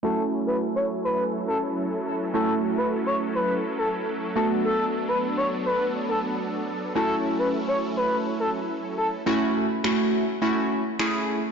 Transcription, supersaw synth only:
\new Staff \with { instrumentName = "Supersaw synth" } { \time 4/4 \key fis \minor \tempo 4 = 104 << { <fis a'>1~ | <fis a'>1~ | <fis a'>1~ | <fis a'>1 |
r1 | } \\ { <cis' e'>1~ | <cis' e'>2.~ <cis' e'>8 <b d'>8~ | <b d'>1 | <cis' e'>1 |
r1 | } >> }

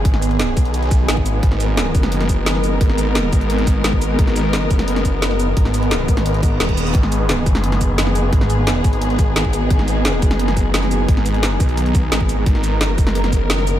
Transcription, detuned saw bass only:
\new Staff \with { instrumentName = "Detuned saw bass" } { \clef bass \time 4/4 \key gis \minor \tempo 4 = 174 gis,,4. b,,4. gis,,4 | r4. fis,,2~ fis,,8 | gis,,4. gis,,4. gis,,4 | gis,,4. r2 r8 |
gis,,4. gis,,8 gis,,4 dis,,4 | gis,,4. fis,,2~ fis,,8 | gis,,4. gis,,4. gis,,4 | gis,,4. fis,,2~ fis,,8 |
gis,,4. b,,4. gis,,4 | gis,,4. fis,,2~ fis,,8 | }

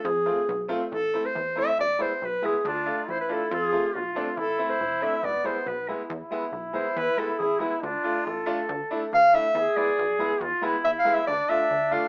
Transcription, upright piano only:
\new Staff \with { instrumentName = "Upright piano" } { \time 2/4 \tempo 4 = 139 r8 <a c' f'>16 r8. <a c' f'>16 r16 | r8 <a c' e'>16 r8. <a c' e'>16 r16 | r8 <gis b e'>16 r8. <gis b e'>16 r16 | r8 <a d' f'>16 r8. <a d' f'>16 r16 |
r8 <a c' f'>16 r8. <a c' d'>16 r16 | r8 <a c' e'>16 r8. <a c' d'>16 r16 | r8 <gis b e'>16 r8. <gis b e'>16 r16 | r8 <gis b e'>16 r8. <gis b e'>16 r16 |
r8 <gis b e'>16 r8. <gis b e'>16 r16 | r8 <a d' f'>16 r8. <a d' f'>16 r16 | r8 <a d' e'>16 r8. <a d' e'>16 r16 | r8 <gis b e'>16 r8. <gis b e'>16 r16 |
r8 <gis b e'>16 r8. <gis b e'>16 r16 | r8 <a d' f'>16 r8. <a d' f'>16 r16 | }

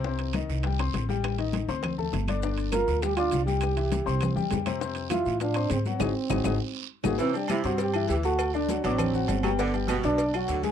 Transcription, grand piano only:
\new Staff \with { instrumentName = "Grand piano" } { \time 4/4 \key c \dorian \tempo 4 = 201 <c c' c''>4 <ees ees' ees''>4 <g g' g''>8 <c' c'' c'''>4 <g g' g''>8~ | <g g' g''>8 <ees ees' ees''>4 <c' c'' c'''>4 <a a' a''>4 <d d' d''>8 | <d d' d''>4 <f f' f''>4 <g g' g''>8 <d' d'' d'''>4 <g g' g''>8~ | <g g' g''>8 <e e' e''>4 <c' c'' c'''>4 <g g' g''>4 <c c' c''>8 |
<c c' c''>4 <e e' e''>4 <f f' f''>8 <c' c'' c'''>4 <fis fis' fis''>8 | <ees' ges' aes'>8 r8 <ees' ges' aes'>8 <ees' ges' aes'>8 r4. <ees' ges' aes'>8 | <c c' c''>8 <g g' g''>4 <c' c'' c'''>4 <e e' e''>4 <a a' a''>8~ | <a a' a''>8 <d d' d''>8 <fis fis' fis''>8 <d' d'' d'''>4 <fis fis' fis''>4 <g g' g''>8 |
<d d' d''>8 <g g' g''>4 <d' d'' d'''>4 <fis fis' fis''>4 <aes aes' aes''>8 | }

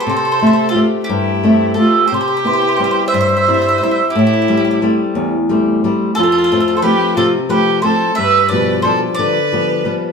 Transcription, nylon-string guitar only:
\new Staff \with { instrumentName = "Nylon-string guitar" } { \time 6/8 \key c \major \tempo 4. = 59 c8 <a c' e''>8 <a c' g'>8 g,8 <a c' e''>8 <a c' g'>8 | c8 <b c' e'>8 <g c' e'>8 g,8 <g c' e'>8 <c' e'>8 | a,8 <g a c'>8 <g a c'>8 e,8 <g a c'>8 <g a c'>8 | f,8 <f a c'>8 <f a c'>8 c8 <f a c'>8 <f a c'>8 |
g,8 <b, f g>8 <f g d'>8 d8 <f g b>8 <f g b>8 | }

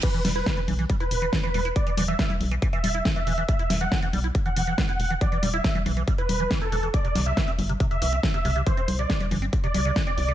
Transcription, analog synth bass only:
\new Staff \with { instrumentName = "Analog synth bass" } { \clef bass \time 4/4 \key e \minor \tempo 4 = 139 r8 e,,8 r8 b,,8 r8 e,,8 r8 e,,8 | r8 e,,8 r8 b,,8 r8 e,,8 r8 e,,8 | r8 e,,8 r8 b,,8 r8 e,,8 r8 e,,8 | r8 e,,8 r8 b,,8 r8 e,,8 r8 e,,8 |
r8 c,8 r8 g,,8 r8 c,8 r8 c,8 | r8 c,8 r8 g,,8 r8 c,8 r8 c,8 | }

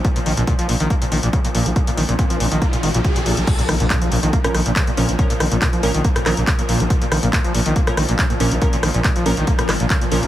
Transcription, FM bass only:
\new Staff \with { instrumentName = "FM bass" } { \clef bass \time 4/4 \key bes \minor \tempo 4 = 140 r8 bes,,16 bes,,16 r8 bes,,16 bes,,16 r8 bes,,16 bes,,16 r8 bes,,16 bes,,16 | r8 bes,,16 bes,,16 r8 bes,,16 bes,,16 r8 aes,,16 bes,,16 r8 bes,,16 bes,,16 | r8 bes,,16 bes,,16 r8 bes,,16 bes,,16 r8 bes,,16 bes,,16 r8 bes,,16 bes,,16 | r8 bes,,16 bes,,16 r8 bes,,16 bes,,16 r8 bes,,16 bes,,16 r8 bes,,16 bes,,16 |
r8 bes,,16 bes,,16 r8 bes,,16 bes,,16 r8 bes,,16 bes,,16 r8 bes,,16 bes,,16 | r8 bes,,16 bes,,16 r8 bes,,16 bes,,16 r8 aes,,16 bes,,16 r8 bes,,16 bes,,16 | }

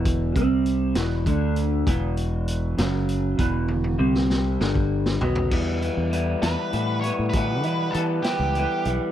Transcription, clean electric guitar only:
\new Staff \with { instrumentName = "Clean electric guitar" } { \clef bass \time 6/8 \key e \minor \tempo 4. = 66 <e, b, e>8 <c g c'>4 <e, b, e>8 <d a d'>4 | <e, b, e>4. <fis, cis fis>4 <e, b, e>8~ | <e, b, e>8 <c g c'>4 <g, d g>4 <b, fis b>8 | <e, b, e g b e'>8 <e g b e'>8 <e g b e'>8 <e g b e'>8 <e g b e'>8 <e g b e'>8 |
<e, b, e g b e'>8 <e g b e'>8 <e g b e'>8 <e g b e'>8 <e g b e'>8 <e g b e'>8 | }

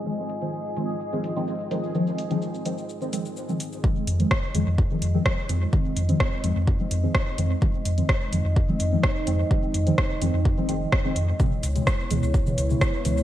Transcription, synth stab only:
\new Staff \with { instrumentName = "Synth stab" } { \clef bass \time 4/4 \key f \minor \tempo 4 = 127 <ees f aes c'>8 r16 <ees f aes c'>8 r16 <ees f aes c'>8 r16 <ees f aes c'>8 <ees f aes c'>8 r16 <ees f aes c'>8 | <ees f aes c'>8 r16 <ees f aes c'>8 r16 <ees f aes c'>8 r16 <ees f aes c'>16 <ees f aes c'>8 r16 <ees f aes c'>8 r16 | <ees f aes c'>8 r16 <ees f aes c'>8 r16 <ees f aes c'>8 r16 <ees f aes c'>8 <ees f aes c'>8 r16 <ees f aes c'>8 | <ees f aes c'>8 r16 <ees f aes c'>8 r16 <ees f aes c'>8 r16 <ees f aes c'>8 <ees f aes c'>8 r16 <ees f aes c'>8 |
<ees f aes c'>8 r16 <ees f aes c'>8 r16 <ees f aes c'>8 r16 <ees f aes c'>8 <ees f aes c'>8 r16 <ees f aes c'>8 | <ees f aes c'>8 r16 <ees f aes c'>8 r16 <ees f aes c'>8 r16 <ees f aes c'>16 <ees f aes c'>8 r16 <ees f aes c'>8 r16 | <ces des fes aes>8 r16 <ces des fes aes>8 r16 <ces des fes aes>8 r16 <ces des fes aes>8 <ces des fes aes>8 r16 <ces des fes aes>8 | }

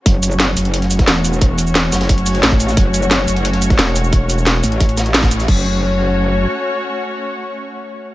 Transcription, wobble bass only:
\new Staff \with { instrumentName = "Wobble bass" } { \clef bass \time 4/4 \key fis \minor \tempo 4 = 177 fis,,4. fis,,4. e,,4~ | e,,4. fis,,4. a,,4 | fis,,4. fis,,4. r4 | r4. a,,2~ a,,8 |
fis,,2. r4 | r1 | }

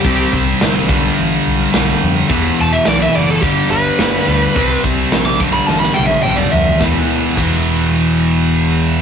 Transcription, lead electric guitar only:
\new Staff \with { instrumentName = "Lead electric guitar" } { \time 4/4 \key e \minor \tempo 4 = 106 g'8 r2. r8 | r8 a''16 e''16 d''16 e''16 d''16 a'16 g'8 b'4.~ | b'8 r8. d'''16 r16 b''16 a''16 b''16 g''16 e''16 g''16 d''16 e''8 | r1 | }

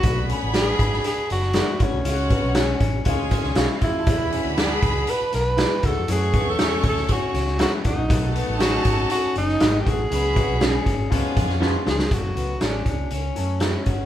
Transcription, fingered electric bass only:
\new Staff \with { instrumentName = "Fingered electric bass" } { \clef bass \time 4/4 \key fis \minor \tempo 4 = 119 b,,8. a,,8. gis,,8 r8 fis,,8. r16 gis,,16 bis,,16 | cis,8. b,,8. a,,8 cis,16 d,16 r16 cis,16 b,,16 r16 dis,8 | e,8. d,8. cis,8 r8 b,,8. r16 cis,16 eis,16 | fis,8. e,8. d,8 r8 cis,8. r16 d,16 ais,,16 |
b,,8. a,,8. gis,,8 r8 fis,,8 gis,,8 a,,8 | cis,8. b,,8. gis,,8 cis,16 r16 eis,4 cis,8 | fis,,8 cis,8 a,,8 cis,8 cis,8 fis,4 g,,8 | }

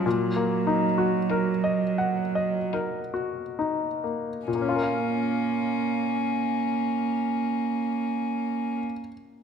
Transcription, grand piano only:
\new Staff \with { instrumentName = "Grand piano" } { \time 3/4 \key bes \minor \tempo 4 = 37 bes,16 bes16 ees'16 ges'16 bes'16 ees''16 ges''16 ees''16 bes'16 ges'16 ees'16 bes16 | <bes, bes des' f' bes' f''>2. | }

